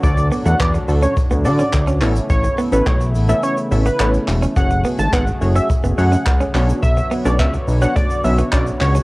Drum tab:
HH |xxoxxxoxxxoxxxox|xxoxxxoxxxoxxxox|xxoxxxoxxxoxxxox|xxoxxxoxxxoxxxox|
SH |xxxxxxxxxxxxxxxx|xxxxxxxxxxxxxxxx|xxxxxxxxxxxxxxxx|xxxxxxxxxxxxxxxx|
CP |----x-------x-x-|----x-------x-x-|----x-------x-x-|----x-------x-x-|
BD |o---o---o---o---|o---o-----------|o---o---o---o---|o---o---o---o---|